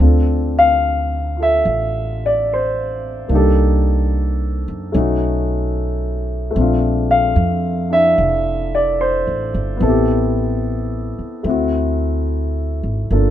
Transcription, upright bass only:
0, 0, Header, 1, 3, 480
1, 0, Start_track
1, 0, Time_signature, 4, 2, 24, 8
1, 0, Key_signature, -1, "minor"
1, 0, Tempo, 827586
1, 1918, Tempo, 813008
1, 5758, Tempo, 826446
1, 7787, End_track
2, 0, Start_track
2, 0, Title_t, "Upright bass"
2, 0, Program_c, 0, 32
2, 0, Note_on_c, 0, 38, 57
2, 934, Note_off_c, 0, 38, 0
2, 958, Note_on_c, 0, 33, 58
2, 1893, Note_off_c, 0, 33, 0
2, 1910, Note_on_c, 0, 36, 60
2, 2698, Note_off_c, 0, 36, 0
2, 2728, Note_on_c, 0, 42, 50
2, 2870, Note_off_c, 0, 42, 0
2, 2885, Note_on_c, 0, 35, 64
2, 3813, Note_off_c, 0, 35, 0
2, 3838, Note_on_c, 0, 34, 68
2, 4289, Note_off_c, 0, 34, 0
2, 4310, Note_on_c, 0, 41, 58
2, 4768, Note_off_c, 0, 41, 0
2, 4795, Note_on_c, 0, 29, 63
2, 5415, Note_off_c, 0, 29, 0
2, 5440, Note_on_c, 0, 33, 44
2, 5588, Note_off_c, 0, 33, 0
2, 5600, Note_on_c, 0, 31, 52
2, 5748, Note_off_c, 0, 31, 0
2, 5754, Note_on_c, 0, 33, 62
2, 6534, Note_off_c, 0, 33, 0
2, 6706, Note_on_c, 0, 38, 61
2, 7495, Note_off_c, 0, 38, 0
2, 7514, Note_on_c, 0, 32, 46
2, 7662, Note_off_c, 0, 32, 0
2, 7671, Note_on_c, 0, 31, 59
2, 7787, Note_off_c, 0, 31, 0
2, 7787, End_track
3, 0, Start_track
3, 0, Title_t, "Muted upright bass strokes"
3, 6557, Note_on_c, 9, 29, 27
3, 6615, Note_off_c, 9, 29, 0
3, 7787, End_track
0, 0, End_of_file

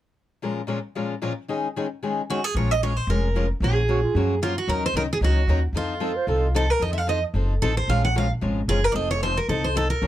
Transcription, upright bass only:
0, 0, Header, 1, 2, 480
1, 0, Start_track
1, 0, Key_signature, -5, "minor"
1, 0, Tempo, 266785
1, 741, Time_signature, 4, 2, 24, 8
1, 18120, End_track
2, 0, Start_track
2, 0, Title_t, "Upright bass"
2, 0, Program_c, 0, 32
2, 4579, Note_on_c, 0, 34, 70
2, 5349, Note_off_c, 0, 34, 0
2, 5526, Note_on_c, 0, 29, 78
2, 6300, Note_off_c, 0, 29, 0
2, 6484, Note_on_c, 0, 34, 78
2, 7259, Note_off_c, 0, 34, 0
2, 7458, Note_on_c, 0, 42, 75
2, 8228, Note_off_c, 0, 42, 0
2, 8413, Note_on_c, 0, 39, 76
2, 8801, Note_off_c, 0, 39, 0
2, 8873, Note_on_c, 0, 36, 66
2, 9294, Note_off_c, 0, 36, 0
2, 9370, Note_on_c, 0, 37, 81
2, 9784, Note_off_c, 0, 37, 0
2, 9848, Note_on_c, 0, 39, 75
2, 10262, Note_off_c, 0, 39, 0
2, 10304, Note_on_c, 0, 41, 68
2, 11088, Note_off_c, 0, 41, 0
2, 11281, Note_on_c, 0, 36, 71
2, 12058, Note_off_c, 0, 36, 0
2, 12230, Note_on_c, 0, 41, 67
2, 13011, Note_off_c, 0, 41, 0
2, 13201, Note_on_c, 0, 30, 80
2, 13618, Note_off_c, 0, 30, 0
2, 13709, Note_on_c, 0, 33, 72
2, 14114, Note_off_c, 0, 33, 0
2, 14171, Note_on_c, 0, 34, 77
2, 14944, Note_off_c, 0, 34, 0
2, 15151, Note_on_c, 0, 32, 84
2, 15556, Note_off_c, 0, 32, 0
2, 15619, Note_on_c, 0, 30, 73
2, 16029, Note_off_c, 0, 30, 0
2, 16089, Note_on_c, 0, 29, 79
2, 16863, Note_off_c, 0, 29, 0
2, 17066, Note_on_c, 0, 36, 81
2, 17834, Note_off_c, 0, 36, 0
2, 18023, Note_on_c, 0, 34, 81
2, 18120, Note_off_c, 0, 34, 0
2, 18120, End_track
0, 0, End_of_file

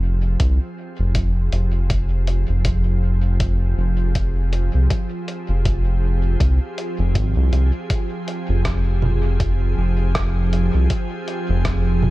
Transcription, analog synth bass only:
0, 0, Header, 1, 2, 480
1, 0, Start_track
1, 0, Key_signature, -4, "minor"
1, 0, Tempo, 750000
1, 1216, Time_signature, 4, 2, 24, 8
1, 7746, End_track
2, 0, Start_track
2, 0, Title_t, "Analog synth bass"
2, 0, Program_c, 0, 38
2, 0, Note_on_c, 0, 29, 86
2, 236, Note_off_c, 0, 29, 0
2, 256, Note_on_c, 0, 36, 88
2, 379, Note_off_c, 0, 36, 0
2, 636, Note_on_c, 0, 29, 88
2, 957, Note_off_c, 0, 29, 0
2, 975, Note_on_c, 0, 29, 90
2, 1568, Note_off_c, 0, 29, 0
2, 1594, Note_on_c, 0, 29, 89
2, 2396, Note_off_c, 0, 29, 0
2, 2417, Note_on_c, 0, 29, 88
2, 3009, Note_off_c, 0, 29, 0
2, 3036, Note_on_c, 0, 36, 76
2, 3124, Note_off_c, 0, 36, 0
2, 3514, Note_on_c, 0, 29, 92
2, 4076, Note_off_c, 0, 29, 0
2, 4097, Note_on_c, 0, 36, 84
2, 4219, Note_off_c, 0, 36, 0
2, 4474, Note_on_c, 0, 29, 82
2, 4574, Note_off_c, 0, 29, 0
2, 4578, Note_on_c, 0, 32, 87
2, 4700, Note_off_c, 0, 32, 0
2, 4714, Note_on_c, 0, 36, 101
2, 4803, Note_off_c, 0, 36, 0
2, 4814, Note_on_c, 0, 36, 79
2, 4938, Note_off_c, 0, 36, 0
2, 5435, Note_on_c, 0, 29, 90
2, 6236, Note_off_c, 0, 29, 0
2, 6257, Note_on_c, 0, 29, 88
2, 6849, Note_off_c, 0, 29, 0
2, 6877, Note_on_c, 0, 36, 76
2, 6965, Note_off_c, 0, 36, 0
2, 7356, Note_on_c, 0, 29, 93
2, 7746, Note_off_c, 0, 29, 0
2, 7746, End_track
0, 0, End_of_file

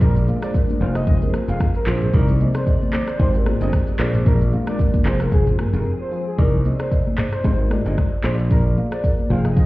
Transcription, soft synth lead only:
0, 0, Header, 1, 2, 480
1, 0, Start_track
1, 0, Tempo, 530973
1, 11, Time_signature, 4, 2, 24, 8
1, 8732, End_track
2, 0, Start_track
2, 0, Title_t, "Soft synth lead"
2, 0, Program_c, 0, 80
2, 14, Note_on_c, 0, 70, 104
2, 125, Note_off_c, 0, 70, 0
2, 384, Note_on_c, 0, 74, 81
2, 475, Note_off_c, 0, 74, 0
2, 733, Note_on_c, 0, 77, 85
2, 844, Note_off_c, 0, 77, 0
2, 863, Note_on_c, 0, 75, 77
2, 955, Note_off_c, 0, 75, 0
2, 969, Note_on_c, 0, 75, 91
2, 1082, Note_off_c, 0, 75, 0
2, 1343, Note_on_c, 0, 77, 74
2, 1434, Note_off_c, 0, 77, 0
2, 1585, Note_on_c, 0, 70, 72
2, 1676, Note_off_c, 0, 70, 0
2, 1824, Note_on_c, 0, 72, 76
2, 1915, Note_off_c, 0, 72, 0
2, 1932, Note_on_c, 0, 70, 106
2, 2044, Note_off_c, 0, 70, 0
2, 2305, Note_on_c, 0, 72, 83
2, 2396, Note_off_c, 0, 72, 0
2, 2652, Note_on_c, 0, 74, 90
2, 2764, Note_off_c, 0, 74, 0
2, 2785, Note_on_c, 0, 72, 89
2, 2876, Note_off_c, 0, 72, 0
2, 2895, Note_on_c, 0, 72, 92
2, 3005, Note_off_c, 0, 72, 0
2, 3265, Note_on_c, 0, 75, 79
2, 3356, Note_off_c, 0, 75, 0
2, 3615, Note_on_c, 0, 72, 77
2, 3725, Note_off_c, 0, 72, 0
2, 3856, Note_on_c, 0, 70, 104
2, 3966, Note_off_c, 0, 70, 0
2, 4228, Note_on_c, 0, 74, 81
2, 4318, Note_off_c, 0, 74, 0
2, 4574, Note_on_c, 0, 72, 83
2, 4685, Note_off_c, 0, 72, 0
2, 4705, Note_on_c, 0, 70, 72
2, 4796, Note_off_c, 0, 70, 0
2, 4816, Note_on_c, 0, 68, 90
2, 4926, Note_off_c, 0, 68, 0
2, 5190, Note_on_c, 0, 70, 75
2, 5279, Note_off_c, 0, 70, 0
2, 5429, Note_on_c, 0, 72, 72
2, 5518, Note_off_c, 0, 72, 0
2, 5669, Note_on_c, 0, 68, 75
2, 5758, Note_off_c, 0, 68, 0
2, 5775, Note_on_c, 0, 70, 103
2, 5886, Note_off_c, 0, 70, 0
2, 6150, Note_on_c, 0, 72, 82
2, 6239, Note_off_c, 0, 72, 0
2, 6494, Note_on_c, 0, 74, 89
2, 6605, Note_off_c, 0, 74, 0
2, 6628, Note_on_c, 0, 72, 89
2, 6718, Note_off_c, 0, 72, 0
2, 6735, Note_on_c, 0, 72, 94
2, 6846, Note_off_c, 0, 72, 0
2, 7108, Note_on_c, 0, 75, 72
2, 7197, Note_off_c, 0, 75, 0
2, 7454, Note_on_c, 0, 72, 77
2, 7565, Note_off_c, 0, 72, 0
2, 7695, Note_on_c, 0, 70, 97
2, 7806, Note_off_c, 0, 70, 0
2, 8067, Note_on_c, 0, 74, 75
2, 8157, Note_off_c, 0, 74, 0
2, 8415, Note_on_c, 0, 77, 82
2, 8525, Note_off_c, 0, 77, 0
2, 8544, Note_on_c, 0, 75, 72
2, 8635, Note_off_c, 0, 75, 0
2, 8654, Note_on_c, 0, 75, 91
2, 8732, Note_off_c, 0, 75, 0
2, 8732, End_track
0, 0, End_of_file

